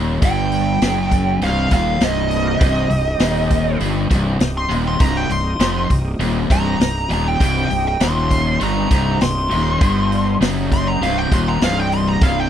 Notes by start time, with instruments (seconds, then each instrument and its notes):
Already playing: fingered electric bass D#1, overdriven electric guitar D#2
0.22 fingered electric bass G1, overdriven electric guitar G2, lead electric guitar G5, kick, open hi-hat
0.52 open hi-hat
0.82 fingered electric bass F#1, overdriven electric guitar F#2, snare, open hi-hat
1.11 kick, open hi-hat
1.41 fingered electric bass C1, overdriven electric guitar C2, lead electric guitar F5, open hi-hat
1.71 fingered electric bass D#1, overdriven electric guitar D#2, lead electric guitar F5, kick, snare, open hi-hat
2.01 fingered electric bass C1, overdriven electric guitar C2, lead electric guitar D#5, snare, open hi-hat
2.31 tonewheel organ A3 B3, open hi-hat
2.37 tonewheel organ C4 D4
2.42 tonewheel organ E4 F4
2.47 tonewheel organ G4 A4
2.54 tonewheel organ B4 C5
2.59 fingered electric bass C1, overdriven electric guitar C2, tonewheel organ C4 D#4 G4 D5 D#5, kick, open hi-hat
2.90 fingered electric bass C1, overdriven electric guitar C2, open hi-hat
3.20 fingered electric bass D#1, overdriven electric guitar D#2, snare, open hi-hat
3.50 kick, open hi-hat
3.80 fingered electric bass G1, overdriven electric guitar G2, open hi-hat
4.09 fingered electric bass C1, overdriven electric guitar C2, kick, open hi-hat
4.40 fingered electric bass C1, overdriven electric guitar C2, snare, open hi-hat
4.57 lead electric guitar C6
4.69 fingered electric bass D#1, overdriven electric guitar D#2, open hi-hat
4.87 lead electric guitar C6
4.99 fingered electric bass C1, overdriven electric guitar C2, tonewheel organ C4 D#4 G4 D#5, lead electric guitar A#5, kick, open hi-hat
5.17 lead electric guitar G5
5.29 fingered electric bass C1, overdriven electric guitar C2, lead electric guitar C6, open hi-hat
5.59 fingered electric bass F1, overdriven electric guitar F2, snare, open hi-hat
5.90 fingered electric bass C1, overdriven electric guitar C2, kick, open hi-hat
6.19 fingered electric bass D#1, overdriven electric guitar D#2, open hi-hat
6.50 fingered electric bass C1, overdriven electric guitar C2, lead electric guitar A#5, kick, open hi-hat
6.80 fingered electric bass C1, overdriven electric guitar C2, snare, open hi-hat
7.09 fingered electric bass D#1, overdriven electric guitar D#2, open hi-hat
7.13 lead electric guitar A#5
7.28 lead electric guitar G5
7.40 fingered electric bass C1, overdriven electric guitar C2, tonewheel organ C4 D#4 G4 D#5, kick, open hi-hat
7.70 fingered electric bass C1, overdriven electric guitar C2, open hi-hat
7.88 lead electric guitar G5
8.00 fingered electric bass D#1, overdriven electric guitar D#2, lead electric guitar C6, snare, open hi-hat
8.31 kick, open hi-hat
8.60 fingered electric bass G1, overdriven electric guitar G2, lead electric guitar A#5, open hi-hat
8.91 fingered electric bass C1, overdriven electric guitar C2, kick, open hi-hat
9.21 fingered electric bass C1, overdriven electric guitar C2, lead electric guitar C6, snare, open hi-hat
9.51 fingered electric bass D#1, overdriven electric guitar D#2, open hi-hat
9.80 fingered electric bass G1, overdriven electric guitar G2, tonewheel organ D#4 G4 C5 D#5, kick, open hi-hat
10.12 open hi-hat
10.41 fingered electric bass F#1, overdriven electric guitar F#2, snare, open hi-hat
10.72 lead electric guitar C6, kick, open hi-hat
10.88 lead electric guitar A#5
11.01 fingered electric bass C1, overdriven electric guitar C2, lead electric guitar F5, open hi-hat
11.18 lead electric guitar G5
11.31 fingered electric bass D#1, overdriven electric guitar D#2, lead electric guitar C6, kick, open hi-hat
11.49 lead electric guitar A#5
11.61 fingered electric bass C1, overdriven electric guitar C2, lead electric guitar F5, snare, open hi-hat
11.79 lead electric guitar G5
11.92 lead electric guitar C6, open hi-hat
12.09 lead electric guitar A#5
12.21 fingered electric bass C1, overdriven electric guitar C2, tonewheel organ E4 G#4 C#5 E5, lead electric guitar F5, kick, open hi-hat
12.40 tonewheel organ D#4 G4 C5, lead electric guitar G5
12.44 tonewheel organ D#5